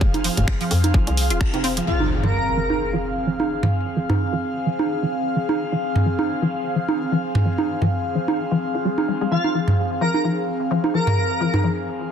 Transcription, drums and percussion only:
0.01 kick
0.14 closed hi-hat, high conga
0.24 open hi-hat
0.37 closed hi-hat, mid tom
0.48 finger snap, kick
0.61 open hi-hat
0.71 open hi-hat
0.84 closed hi-hat, high conga
0.94 kick
1.07 closed hi-hat
1.17 open hi-hat
1.30 closed hi-hat
1.41 finger snap, kick
1.54 closed hi-hat, high conga
1.64 open hi-hat
1.77 closed hi-hat
2.00 high conga
2.23 mid tom
2.70 high conga
3.40 high conga
3.63 mid tom
4.10 mid tom, high conga
4.79 high conga
5.49 high conga
5.96 mid tom
6.19 high conga
6.89 high conga
7.35 mid tom
7.58 high conga
7.82 mid tom
8.28 high conga
8.98 high conga
9.44 high conga
9.68 mid tom
10.14 high conga
10.84 high conga
11.07 mid tom
11.54 mid tom, high conga

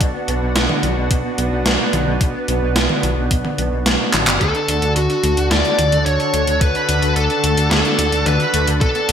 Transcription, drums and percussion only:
0.01 kick, closed hi-hat
0.28 closed hi-hat
0.56 snare, closed hi-hat
0.69 mid tom
0.83 closed hi-hat
1.11 kick, closed hi-hat
1.38 closed hi-hat
1.66 snare, closed hi-hat
1.93 closed hi-hat, mid tom
2.21 kick, closed hi-hat
2.48 closed hi-hat
2.76 snare, closed hi-hat
2.90 mid tom
3.03 closed hi-hat
3.31 kick, closed hi-hat
3.45 mid tom
3.58 closed hi-hat
3.86 snare, closed hi-hat
4.13 clap, closed hi-hat, mid tom
4.27 clap
4.41 kick, closed hi-hat
4.55 closed hi-hat
4.68 closed hi-hat
4.82 closed hi-hat
4.96 closed hi-hat
5.10 closed hi-hat
5.23 closed hi-hat
5.37 closed hi-hat
5.51 snare, closed hi-hat
5.65 closed hi-hat
5.79 closed hi-hat, mid tom
5.92 closed hi-hat
6.06 closed hi-hat
6.20 closed hi-hat
6.34 closed hi-hat
6.47 closed hi-hat
6.61 kick, closed hi-hat
6.75 closed hi-hat
6.89 closed hi-hat
7.02 closed hi-hat
7.16 closed hi-hat
7.30 closed hi-hat
7.44 closed hi-hat
7.57 closed hi-hat
7.71 snare, closed hi-hat
7.85 closed hi-hat
7.99 closed hi-hat
8.12 closed hi-hat
8.26 closed hi-hat, mid tom
8.40 closed hi-hat
8.54 closed hi-hat
8.67 closed hi-hat
8.81 kick, closed hi-hat
8.95 closed hi-hat
9.09 closed hi-hat

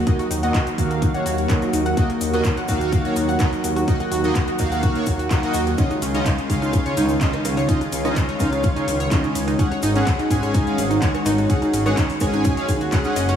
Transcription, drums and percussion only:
0.07 kick, closed hi-hat, cabasa
0.19 cross-stick, closed hi-hat, cabasa
0.31 open hi-hat, cabasa
0.43 closed hi-hat, cabasa
0.54 kick, clap, closed hi-hat, cabasa
0.67 closed hi-hat, cabasa
0.78 kick, open hi-hat, cabasa
0.91 cross-stick, closed hi-hat, cabasa
1.02 kick, closed hi-hat, cabasa
1.14 closed hi-hat, cabasa
1.26 open hi-hat, cabasa
1.38 closed hi-hat, cabasa
1.49 kick, clap, closed hi-hat, cabasa
1.62 closed hi-hat, cabasa
1.73 open hi-hat, cabasa
1.85 cross-stick, closed hi-hat, cabasa
1.97 kick, closed hi-hat, cabasa
2.10 cross-stick, closed hi-hat, cabasa
2.21 open hi-hat, cabasa
2.34 closed hi-hat, cabasa
2.44 kick, clap, closed hi-hat, cabasa
2.57 closed hi-hat, cabasa
2.68 kick, open hi-hat, cabasa
2.81 cross-stick, closed hi-hat, cabasa
2.92 kick, closed hi-hat, cabasa
3.05 closed hi-hat, cabasa
3.16 open hi-hat, cabasa
3.29 closed hi-hat, cabasa
3.39 kick, clap, closed hi-hat, cabasa
3.53 closed hi-hat, cabasa
3.64 open hi-hat, cabasa
3.76 cross-stick, closed hi-hat, cabasa
3.88 kick, closed hi-hat, cabasa
4.00 cross-stick, closed hi-hat, cabasa
4.12 open hi-hat, cabasa
4.24 closed hi-hat, cabasa
4.35 kick, clap, closed hi-hat, cabasa
4.48 closed hi-hat, cabasa
4.59 kick, open hi-hat, cabasa
4.72 cross-stick, closed hi-hat, cabasa
4.83 kick, closed hi-hat, cabasa
4.95 closed hi-hat, cabasa
5.06 kick, open hi-hat, cabasa
5.19 closed hi-hat, cabasa
5.31 kick, clap, closed hi-hat, cabasa
5.43 closed hi-hat, cabasa
5.54 open hi-hat, cabasa
5.67 cross-stick, closed hi-hat, cabasa
5.78 kick, closed hi-hat, ride, high conga, cabasa
5.91 cross-stick, closed hi-hat, cabasa
6.02 open hi-hat, ride, cabasa
6.14 closed hi-hat, high conga, cabasa
6.26 kick, clap, closed hi-hat, ride, low conga, cabasa
6.38 closed hi-hat, cabasa
6.50 kick, open hi-hat, ride, high conga, cabasa
6.62 cross-stick, closed hi-hat, cabasa
6.73 kick, closed hi-hat, ride, cabasa
6.86 closed hi-hat, cabasa
6.97 open hi-hat, ride, high conga, low conga, cabasa
7.09 closed hi-hat, cabasa
7.21 kick, clap, closed hi-hat, ride, cabasa
7.33 cross-stick, closed hi-hat, high conga, cabasa
7.45 cross-stick, open hi-hat, ride, low conga, cabasa
7.57 cross-stick, closed hi-hat, cabasa
7.68 kick, closed hi-hat, ride, high conga, cabasa
7.81 cross-stick, closed hi-hat, cabasa
7.92 open hi-hat, ride, cabasa
8.05 cross-stick, closed hi-hat, high conga, cabasa
8.16 kick, clap, closed hi-hat, ride, low conga, cabasa
8.28 closed hi-hat, cabasa
8.40 kick, cross-stick, open hi-hat, ride, high conga, cabasa
8.52 cross-stick, closed hi-hat, cabasa
8.63 kick, closed hi-hat, ride, cabasa
8.76 closed hi-hat, cabasa
8.88 open hi-hat, ride, high conga, cabasa
9.00 closed hi-hat, cabasa
9.11 kick, clap, closed hi-hat, ride, cabasa
9.24 closed hi-hat, high conga, cabasa
9.35 open hi-hat, ride, cabasa
9.48 cross-stick, closed hi-hat, cabasa
9.59 kick, closed hi-hat, ride, high conga, cabasa
9.72 cross-stick, closed hi-hat, cabasa
9.82 open hi-hat, ride, cabasa
9.95 closed hi-hat, high conga, cabasa
10.07 kick, clap, closed hi-hat, ride, low conga, cabasa
10.19 closed hi-hat, cabasa
10.31 kick, open hi-hat, ride, high conga, cabasa
10.43 cross-stick, closed hi-hat, cabasa
10.54 kick, closed hi-hat, ride, cabasa
10.67 closed hi-hat, cabasa
10.78 open hi-hat, ride, high conga, low conga, cabasa
10.91 closed hi-hat, cabasa
11.02 kick, clap, closed hi-hat, ride, cabasa
11.14 cross-stick, closed hi-hat, high conga, cabasa
11.26 cross-stick, open hi-hat, ride, low conga, cabasa
11.38 cross-stick, closed hi-hat, cabasa
11.50 kick, closed hi-hat, ride, high conga, cabasa
11.62 cross-stick, closed hi-hat, cabasa
11.74 open hi-hat, ride, cabasa
11.86 cross-stick, closed hi-hat, high conga, cabasa
11.97 kick, clap, closed hi-hat, ride, low conga, cabasa
12.09 open hi-hat, cabasa
12.20 kick, cross-stick, open hi-hat, ride, high conga, cabasa
12.33 cross-stick, closed hi-hat, cabasa
12.44 kick, closed hi-hat, ride, cabasa
12.57 closed hi-hat, cabasa
12.69 kick, open hi-hat, ride, high conga, cabasa
12.80 closed hi-hat, cabasa
12.92 kick, clap, closed hi-hat, ride, cabasa
13.04 closed hi-hat, high conga, cabasa
13.16 open hi-hat, ride, cabasa
13.28 cross-stick, closed hi-hat, cabasa

